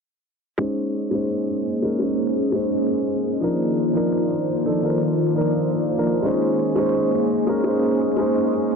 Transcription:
0.58 1.09 G#3 medium
0.58 6.20 A#3 medium
0.58 1.10 C#4 medium
0.58 3.39 C#4 medium
0.58 1.11 D#4 medium
0.58 3.39 G#4 medium
0.58 8.76 C5 medium
0.58 1.11 C5 medium
0.58 3.39 D#5 medium
0.58 closed hi-hat medium
0.77 closed hi-hat medium
0.95 closed hi-hat medium
1.11 1.80 G#3 medium
1.11 1.81 C#4 medium
1.11 1.81 D#4 medium
1.11 1.82 C5 medium
1.11 closed hi-hat medium
1.30 closed hi-hat medium
1.48 closed hi-hat medium
1.65 closed hi-hat medium
1.82 1.98 G#3 medium
1.82 1.98 C#4 medium
1.82 1.99 D#4 medium
1.82 1.99 A#4 medium
1.82 closed hi-hat medium
1.99 2.50 G#3 medium
1.99 2.51 C#4 medium
1.99 2.52 D#4 medium
1.99 2.52 C5 medium
1.99 closed hi-hat medium
2.18 closed hi-hat medium
2.36 closed hi-hat medium
2.52 3.39 G#3 medium
2.52 3.39 C#4 medium
2.52 3.40 D#4 medium
2.52 3.40 C5 medium
2.52 closed hi-hat medium
2.71 closed hi-hat medium
2.89 closed hi-hat medium
3.06 closed hi-hat medium
3.24 closed hi-hat medium
3.40 6.21 D#3 medium
3.40 3.92 F3 medium
3.40 3.92 D4 medium
3.40 3.93 D#4 medium
3.40 6.21 F4 medium
3.40 3.93 A#4 medium
3.40 6.21 D5 medium
3.40 closed hi-hat medium
3.59 closed hi-hat medium
3.77 closed hi-hat medium
3.93 4.62 F3 medium
3.93 4.63 D4 medium
3.93 4.63 D#4 medium
3.93 4.64 A#4 loud
3.93 closed hi-hat medium
4.12 closed hi-hat medium
4.30 closed hi-hat medium
4.47 closed hi-hat medium
4.64 4.80 F3 medium
4.64 4.81 D4 medium
4.64 4.81 D#4 medium
4.64 4.81 A4 medium
4.64 closed hi-hat medium
4.81 5.33 F3 medium
4.81 5.34 D4 medium
4.81 5.34 D#4 medium
4.81 5.35 A#4 medium
4.81 closed hi-hat medium
5.00 closed hi-hat medium
5.18 closed hi-hat medium
5.34 5.95 F3 medium
5.34 5.96 D4 medium
5.34 5.96 D#4 medium
5.34 5.97 A#4 medium
5.34 closed hi-hat medium
5.53 closed hi-hat medium
5.71 closed hi-hat medium
5.89 closed hi-hat medium
5.97 6.22 F3 medium
5.97 6.22 D4 medium
5.97 6.22 D#4 medium
5.97 6.22 A#4 medium
6.06 closed hi-hat medium
6.23 6.74 G#3 medium
6.23 8.76 A#3 medium
6.23 6.75 C#4 medium
6.23 8.76 C#4 medium
6.23 6.75 D#4 medium
6.23 8.76 G#4 medium
6.23 6.76 C5 medium
6.23 8.76 D#5 medium
6.23 closed hi-hat medium
6.42 closed hi-hat medium
6.59 closed hi-hat medium
6.76 7.45 G#3 medium
6.76 7.45 C#4 medium
6.76 7.46 D#4 medium
6.76 7.46 C5 loud
6.76 closed hi-hat medium
6.95 closed hi-hat medium
7.12 closed hi-hat medium
7.30 closed hi-hat medium
7.47 7.62 G#3 medium
7.47 7.63 C#4 medium
7.47 7.63 D#4 medium
7.47 7.64 A#4 medium
7.47 closed hi-hat medium
7.64 8.15 G#3 medium
7.64 8.16 C#4 medium
7.64 8.16 D#4 medium
7.64 8.17 C5 medium
7.64 closed hi-hat medium
7.83 closed hi-hat medium
8.01 closed hi-hat medium
8.17 8.76 G#3 medium
8.17 8.76 C#4 medium
8.17 8.76 D#4 medium
8.17 8.76 C5 medium
8.17 closed hi-hat medium
8.36 closed hi-hat medium
8.53 closed hi-hat medium
8.71 closed hi-hat medium

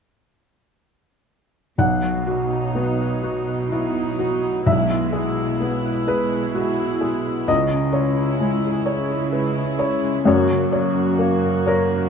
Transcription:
1.78 4.62 B1 soft
1.78 3.06 B2 soft
1.78 4.66 B2 soft
1.78 4.63 F#5 soft
2.03 4.19 F#3 soft
2.27 3.69 F#3 soft
2.27 4.43 B3 soft
2.27 3.69 D#4 soft
2.27 3.04 F#4 soft
2.52 3.95 D#4 soft
2.75 3.52 B3 soft
2.75 3.22 F#4 soft
3.00 3.47 B4 soft
3.23 4.50 B2 soft
3.23 4.00 F#4 soft
3.23 3.70 F#4 soft
3.48 5.84 B4 soft
3.72 4.65 F#3 soft
3.72 4.65 D#4 soft
3.72 4.19 E4 soft
3.72 4.70 F#4 soft
3.96 4.71 D#4 soft
4.19 4.71 F#3 soft
4.19 4.66 F#4 soft
4.44 5.14 B3 soft
4.66 7.44 B1 soft
4.66 5.91 B2 soft
4.66 7.52 B2 soft
4.66 5.13 G#3 soft
4.66 5.13 E4 soft
4.66 6.03 E5 soft
4.91 7.01 G#3 soft
5.13 6.52 G#3 soft
5.13 7.24 B3 soft
5.13 6.52 E4 soft
5.13 5.88 G#4 soft
5.38 6.78 E4 soft
5.60 6.36 B3 soft
5.60 6.08 G#4 soft
5.85 6.31 B4 soft
6.07 7.32 B2 soft
6.07 6.83 G#4 soft
6.07 6.55 G#4 soft
6.07 7.44 B4 soft
6.32 7.52 B4 soft
6.55 7.46 G#3 soft
6.55 7.46 E4 soft
6.55 7.02 F#4 soft
6.55 8.64 G#4 soft
6.79 8.17 E4 soft
7.01 7.94 G#3 soft
7.01 7.48 G#4 soft
7.25 7.52 B3 soft
7.48 10.22 C#2 soft
7.48 10.30 C#3 soft
7.48 8.71 C#3 soft
7.48 10.22 D#5 medium
7.72 9.79 C#4 soft
7.93 10.02 G#3 soft
7.93 9.31 G#3 soft
7.93 9.31 E4 soft
7.93 8.68 C#5 soft
8.18 9.57 E4 soft
8.40 9.14 G#3 soft
8.40 8.86 C#5 soft
8.65 9.10 G#4 soft
8.86 10.10 C#3 soft
8.86 9.60 C#5 soft
8.86 9.33 C#5 soft
9.12 10.31 G#4 soft
9.32 10.24 G#3 soft
9.32 10.24 E4 soft
9.32 9.79 B4 soft
9.32 11.19 C#5 soft
9.58 10.31 E4 soft
9.79 12.09 C#4 soft
9.79 10.26 C#5 soft
10.04 10.30 G#3 soft
10.25 12.09 F#2 soft
10.25 11.51 F#2 soft
10.25 12.09 F#2 soft
10.25 10.71 A#3 soft
10.25 10.72 F#4 soft
10.25 10.71 C#5 soft
10.50 12.09 C#3 soft
10.72 12.09 A#3 soft
10.72 12.09 F#4 soft
10.72 11.48 C#5 soft
10.97 12.09 F#4 soft
11.19 11.95 A#3 soft
11.19 11.67 C#5 soft
11.44 11.91 A#4 soft
11.66 12.09 F#2 soft
11.66 12.09 A#4 medium
11.66 12.09 C#5 soft
11.92 12.09 A#4 soft

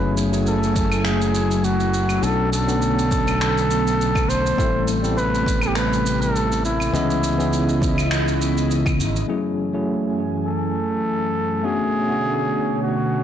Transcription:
0.00 2.18 F#1 medium
0.00 0.29 F#3 medium
0.00 2.20 F#3 medium
0.00 0.29 A3 medium
0.00 2.20 A3 medium
0.00 0.29 C#4 medium
0.00 0.29 E4 medium
0.00 2.20 E4 medium
0.00 0.30 G#4 loud
0.00 0.17 B4 loud
0.00 2.20 G#5 medium
0.17 shaker medium
0.32 0.48 F#3 medium
0.32 0.48 A3 medium
0.32 0.49 C#4 medium
0.32 0.49 E4 medium
0.32 0.49 G#4 medium
0.32 shaker soft
0.47 1.07 A4 medium
0.47 shaker medium
0.63 shaker soft
0.76 kick loud
0.76 shaker medium
0.92 claves medium
0.92 shaker medium
1.05 1.66 G#4 medium
1.05 finger snap medium
1.05 shaker medium
1.21 shaker soft
1.35 shaker medium
1.51 shaker soft
1.64 2.25 F#4 medium
1.64 shaker soft
1.80 shaker soft
1.94 shaker medium
2.09 claves medium
2.09 shaker soft
2.22 4.24 B1 loud
2.22 4.56 D3 medium
2.22 2.64 F#3 medium
2.22 6.90 A3 medium
2.22 2.64 B3 medium
2.22 4.56 B3 medium
2.22 2.64 C#4 medium
2.22 2.65 D4 medium
2.22 2.52 A4 loud
2.22 2.65 A4 medium
2.22 shaker medium
2.53 4.30 A4 loud
2.53 shaker medium
2.68 2.84 F#3 medium
2.68 2.84 B3 medium
2.68 2.84 C#4 medium
2.68 2.84 D4 medium
2.68 2.85 A4 medium
2.68 shaker soft
2.82 shaker medium
2.99 shaker soft
3.11 kick loud
3.11 shaker medium
3.28 claves medium
3.28 shaker soft
3.41 finger snap medium
3.41 shaker medium
3.58 shaker soft
3.71 shaker medium
3.87 shaker medium
4.01 shaker medium
4.15 kick loud
4.15 claves medium
4.15 shaker soft
4.29 4.53 B1 medium
4.29 4.90 C5 loud
4.29 shaker medium
4.46 shaker soft
4.57 6.89 A1 loud
4.57 6.91 C3 medium
4.57 4.99 G3 medium
4.57 6.91 G3 medium
4.57 4.99 A3 medium
4.57 5.00 C4 medium
4.57 5.00 E4 medium
4.57 5.00 A4 loud
4.57 kick loud
4.57 shaker medium
4.88 shaker medium
5.03 5.19 G3 medium
5.03 5.19 B3 medium
5.03 5.19 C4 medium
5.03 5.20 E4 medium
5.03 5.20 A4 medium
5.03 shaker soft
5.17 5.64 B4 loud
5.17 shaker medium
5.35 shaker soft
5.46 kick medium
5.46 shaker medium
5.61 5.78 G4 medium
5.61 claves medium
5.61 shaker soft
5.75 6.23 B4 loud
5.75 finger snap medium
5.75 shaker medium
5.93 shaker soft
6.06 shaker medium
6.21 6.64 A4 loud
6.21 shaker soft
6.36 shaker medium
6.52 shaker soft
6.65 8.66 E4 medium
6.65 shaker medium
6.80 claves medium
6.80 shaker soft
6.93 9.01 C#2 loud
6.93 9.26 C#3 medium
6.93 7.35 E3 medium
6.93 7.35 B3 medium
6.93 9.27 B3 medium
6.93 7.35 C#4 medium
6.93 9.27 E4 medium
6.93 7.35 G#4 medium
6.93 9.27 D#5 medium
6.93 7.35 D#5 medium
6.93 shaker medium
7.10 shaker soft
7.24 shaker medium
7.38 7.54 E3 medium
7.38 7.54 B3 medium
7.38 7.55 C#4 medium
7.38 7.55 D#4 medium
7.38 7.55 G#4 medium
7.38 shaker soft
7.53 shaker medium
7.69 shaker medium
7.82 kick loud
7.82 shaker medium
7.98 claves medium
7.98 shaker soft
8.11 finger snap medium
8.11 shaker medium
8.28 shaker soft
8.42 shaker medium
8.57 shaker soft
8.71 shaker medium
8.86 kick loud
8.86 claves medium
8.86 shaker soft
8.99 9.23 G#1 medium
8.99 shaker medium
9.16 shaker soft
9.28 11.62 F#2 medium
9.28 11.62 E3 medium
9.28 9.70 F#3 medium
9.28 9.70 A3 medium
9.28 13.23 A3 medium
9.28 9.70 C#4 medium
9.28 9.71 E4 medium
9.28 9.71 G#4 medium
9.28 11.62 G#5 medium
9.73 9.89 F#3 medium
9.73 9.90 A3 medium
9.73 9.90 C#4 medium
9.73 9.90 E4 medium
9.73 9.90 G#4 medium
10.47 11.66 A4 loud
11.63 13.23 B2 medium
11.63 13.23 D3 medium
11.63 12.05 A3 medium
11.63 12.05 B3 medium
11.63 12.06 C#4 medium
11.63 12.06 D4 medium
11.63 12.06 F#4 medium
11.63 12.82 G#4 loud
11.63 13.23 C#5 medium
12.09 12.25 A3 medium
12.09 12.25 B3 medium
12.09 12.25 C#4 medium
12.09 12.26 D4 medium
12.09 12.26 F#4 medium
12.82 13.23 F#4 medium

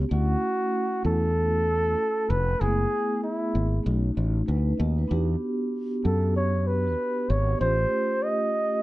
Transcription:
0.09 0.35 D2 loud
0.09 2.56 A3 medium
0.09 2.56 C#4 medium
0.09 2.57 E4 medium
0.09 2.58 F#4 medium
0.13 1.02 F#4 loud
1.05 1.94 E2 medium
1.05 2.32 A4 loud
2.30 2.53 F1 medium
2.30 2.63 B4 medium
2.58 2.85 F#1 loud
2.58 2.68 G#3 soft
2.58 3.83 B3 medium
2.58 3.83 E4 medium
2.58 3.23 G#4 loud
2.63 3.82 A3 medium
2.63 3.84 G#4 medium
3.24 3.82 E4 medium
3.55 3.78 G#1 medium
3.83 4.10 B1 loud
3.83 5.07 A3 medium
3.83 5.07 C#4 medium
3.83 4.47 D#4 medium
3.87 4.48 F#4 medium
4.17 4.41 A1 medium
4.48 4.72 D2 medium
4.48 4.78 D#4 medium
4.48 4.77 B4 medium
4.78 5.03 D#2 loud
4.78 4.98 F#4 medium
4.78 4.97 D#5 medium
4.98 5.29 D#4 medium
4.98 5.28 B4 medium
5.08 5.34 E2 loud
5.08 7.55 B3 medium
5.08 7.56 D4 medium
5.08 7.56 F#4 medium
5.08 7.57 G4 medium
6.05 6.94 F#2 medium
6.05 6.34 A4 medium
6.37 6.69 C#5 medium
6.67 7.31 B4 medium
7.30 7.53 G#1 loud
7.30 7.60 C#5 medium
7.58 7.84 A1 loud
7.58 8.83 A3 medium
7.58 8.83 C#4 medium
7.58 8.83 F4 medium
7.58 8.25 C5 loud
7.62 8.83 G4 medium
8.23 8.83 D#5 loud

